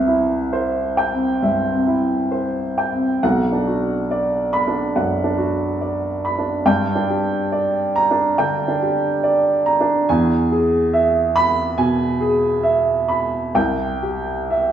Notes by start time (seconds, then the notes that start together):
Already playing: C2 C4 E5
0.07 E4
0.53 C5
0.97 G5
1.12 C4
1.42 G2 E5
1.72 C4
1.87 E4
2.31 C5
2.78 G5
2.93 C4
3.23 B1 F#5
3.52 D4
3.67 F#4
4.11 D5
4.53 B5
4.67 D4
4.96 F#2 F#5
5.24 D4
5.38 F#4
5.81 D5
6.25 B5
6.38 D4
6.66 G2 G5
6.95 D4
7.10 G4
7.52 D5
7.96 A#5
8.11 D4
8.38 D3 G5
8.68 D4
8.82 G4
9.23 D5
9.66 A#5
9.80 D4
10.09 E2 G#5
10.52 G#4
10.93 E5
11.36 B5
11.77 B2 G#5
12.20 G#4
12.63 E5
13.08 B5
13.55 C2 G5
14.03 G4
14.51 E5